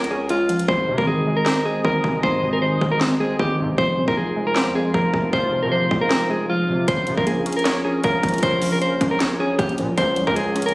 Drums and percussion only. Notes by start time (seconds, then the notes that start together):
0.04 closed hi-hat
0.29 closed hi-hat
0.49 closed hi-hat
0.59 closed hi-hat
0.69 kick
0.98 kick
1.46 snare, clap
1.85 kick
2.04 kick
2.23 kick
2.81 kick
3.01 snare, clap
3.39 kick
3.78 kick
4.08 kick
4.56 snare, clap
4.94 kick
5.14 kick
5.33 kick
5.91 kick
6.10 snare, clap
6.88 kick, closed hi-hat
7.07 closed hi-hat
7.18 kick
7.27 closed hi-hat
7.46 closed hi-hat
7.53 closed hi-hat
7.59 closed hi-hat
7.65 snare, clap, closed hi-hat
8.04 kick, closed hi-hat
8.23 kick, closed hi-hat
8.29 closed hi-hat
8.34 closed hi-hat
8.38 closed hi-hat
8.43 kick, closed hi-hat
8.62 open hi-hat
8.82 closed hi-hat
9.01 kick, closed hi-hat
9.20 snare, clap, closed hi-hat
9.59 kick, closed hi-hat
9.69 closed hi-hat
9.78 closed hi-hat
9.98 kick, closed hi-hat
10.16 closed hi-hat
10.27 kick
10.36 closed hi-hat
10.56 closed hi-hat
10.62 closed hi-hat
10.69 closed hi-hat